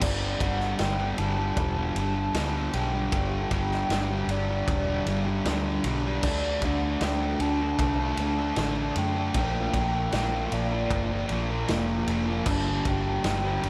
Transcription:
0.01 fingered electric bass G1, distorted electric guitar G2 D3 G3, soft synth lead D5, kick, crash
0.40 fingered electric bass G1, distorted electric guitar G2 D3 G3, soft synth lead F#5, kick, ride
0.60 snare
0.79 fingered electric bass G1, distorted electric guitar G2 D3 G3, soft synth lead G5, snare, ride
0.99 distorted electric guitar D3 G3
1.18 fingered electric bass G1, distorted electric guitar G2 D3 G3, soft synth lead A5, ride
1.37 distorted electric guitar D3 G3
1.57 fingered electric bass E1, soft synth lead A5, kick, ride
1.77 distorted electric guitar D3 G3
1.95 fingered electric bass G1, distorted electric guitar G2 D3 G3, ride
2.15 distorted electric guitar D3 G3
2.34 fingered electric bass D2, distorted electric guitar G2 D3 G3, snare, ride
2.73 fingered electric bass B1, distorted electric guitar G2 D3 G3, soft synth lead G5, ride
2.93 distorted electric guitar D3 G3
3.12 fingered electric bass G1, distorted electric guitar G2 D3 G3, soft synth lead G5, kick, ride
3.51 fingered electric bass G1, distorted electric guitar G2 D3 G3, kick, ride
3.72 snare
3.90 fingered electric bass G1, distorted electric guitar G2 D3 G3, snare, ride
4.10 distorted electric guitar D3 G3
4.27 fingered electric bass G1, distorted electric guitar G2 D3 G3, soft synth lead D5, ride
4.48 distorted electric guitar D3 G3
4.68 fingered electric bass E1, kick, ride
4.87 distorted electric guitar D3 G3
5.06 fingered electric bass G1, distorted electric guitar G2 D3 G3, ride
5.26 distorted electric guitar D3 G3
5.45 fingered electric bass D2, distorted electric guitar G2 D3 G3, snare, ride
5.84 fingered electric bass B1, distorted electric guitar G2 D3 G3, ride
6.05 distorted electric guitar D3 G3
6.23 fingered electric bass D2, distorted electric guitar D3 A3 D4, soft synth lead D5, kick, crash
6.62 fingered electric bass D2, distorted electric guitar D3 A3 D4, soft synth lead F#5, kick, ride
7.01 fingered electric bass D2, distorted electric guitar D3 A3 D4, soft synth lead G5, snare, ride
7.21 distorted electric guitar A3 D4
7.39 fingered electric bass D2, distorted electric guitar D3 A3 D4, soft synth lead A5, ride
7.61 distorted electric guitar A3 D4
7.78 fingered electric bass C2, soft synth lead A5, kick, ride
7.99 distorted electric guitar A3 D4
8.17 fingered electric bass D2, distorted electric guitar D3 A3 D4, ride
8.38 distorted electric guitar A3 D4
8.56 fingered electric bass A1, distorted electric guitar D3 A3 D4, soft synth lead A5, snare, ride
8.96 fingered electric bass F#2, distorted electric guitar D3 A3 D4, soft synth lead G5, ride
9.15 distorted electric guitar A3 D4
9.34 fingered electric bass A#1, distorted electric guitar A#2 F3 A#3, soft synth lead G5, kick, ride
9.73 fingered electric bass A#1, distorted electric guitar A#2 F3 A#3, kick, ride
10.12 fingered electric bass A#1, distorted electric guitar A#2 F3 A#3, snare, ride
10.33 distorted electric guitar F3 A#3
10.52 fingered electric bass A#1, distorted electric guitar A#2 F3 A#3, soft synth lead D5, ride
10.72 distorted electric guitar F3 A#3
10.90 fingered electric bass G1, kick, ride
11.11 distorted electric guitar F3 A#3
11.29 fingered electric bass A#1, distorted electric guitar A#2 F3 A#3, ride
11.50 distorted electric guitar F3 A#3
11.68 fingered electric bass F1, distorted electric guitar A#2 F3 A#3, snare, ride
12.07 fingered electric bass F1, distorted electric guitar A#2 F3 A#3, ride
12.27 distorted electric guitar F3 A#3
12.46 fingered electric bass G1, distorted electric guitar G2 D3 G3, soft synth lead A5, kick, crash
12.85 fingered electric bass G1, distorted electric guitar G2 D3 G3, soft synth lead G5, kick, ride
13.24 fingered electric bass G1, distorted electric guitar G2 D3 G3, snare, ride
13.43 distorted electric guitar D3 G3
13.63 fingered electric bass G1, distorted electric guitar G2 D3 G3, soft synth lead A5, ride

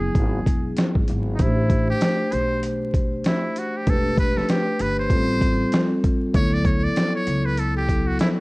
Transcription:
Already playing: upright bass F#1, vibraphone F#3 B3 E4 G#4, muted trumpet G#4
0.15 upright bass G#1, kick, closed hi-hat
0.46 upright bass E1, kick, closed hi-hat
0.77 snare, closed hi-hat
0.95 upright bass G#1, kick
1.08 upright bass G#1, closed hi-hat
1.35 vibraphone A3, muted trumpet D#4
1.39 upright bass A1, vibraphone D4 G4 C5, muted trumpet E4, kick, closed hi-hat
1.70 kick, closed hi-hat
1.90 muted trumpet G4
2.01 snare, closed hi-hat
2.32 upright bass B1, muted trumpet C5, closed hi-hat
2.63 closed hi-hat
2.94 kick, closed hi-hat
3.24 muted trumpet E4, snare, closed hi-hat
3.56 muted trumpet F#4, closed hi-hat
3.77 muted trumpet G4
3.86 upright bass E1, vibraphone A3 D4 G4 B4, muted trumpet A4, kick, closed hi-hat
4.17 muted trumpet B4, kick, closed hi-hat
4.37 muted trumpet A4, snare
4.49 muted trumpet G4, snare, closed hi-hat
4.79 upright bass G1, muted trumpet B4, closed hi-hat
4.99 muted trumpet C5
5.09 upright bass A1, vibraphone G3 C4 F4 A4, kick, closed hi-hat
5.41 kick, closed hi-hat
5.72 snare, closed hi-hat
6.04 kick, closed hi-hat
6.33 upright bass D2, vibraphone F#3 B3 E4 A4, muted trumpet C#5, kick, closed hi-hat
6.54 muted trumpet D5
6.65 muted trumpet C#5, kick, closed hi-hat
6.84 muted trumpet D5
6.96 snare, closed hi-hat
7.15 muted trumpet C#5
7.27 upright bass C#2, closed hi-hat
7.46 muted trumpet B4
7.57 muted trumpet A4, closed hi-hat
7.77 muted trumpet G4
7.88 vibraphone F#3 B3 E4 A4, kick, closed hi-hat
8.07 muted trumpet F#4
8.19 muted trumpet E4, snare, closed hi-hat

